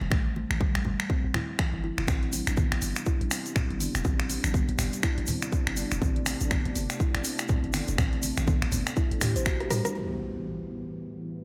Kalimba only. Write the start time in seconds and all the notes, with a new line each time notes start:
0.12 A3
0.36 A3
0.61 G3
0.85 G3
1.10 C4
1.35 E4
1.59 E3
1.84 E4
1.98 E4
2.08 C4
2.33 C4
2.57 B3
2.82 B3
3.07 E4
3.31 C4
3.56 C4
3.80 B3
4.05 C4
4.30 C4
4.54 B3
4.79 B3
5.03 E4
5.28 C4
5.52 C4
5.77 B3
6.02 C4
6.26 C4
6.51 B3
6.76 B3
7.00 E4
7.25 C4
7.49 C4
7.74 B3
7.99 C4
8.23 C4
8.48 B3
8.72 B3
8.97 E4
9.22 G4
9.36 C5
9.46 F#4
9.61 G4
9.71 G3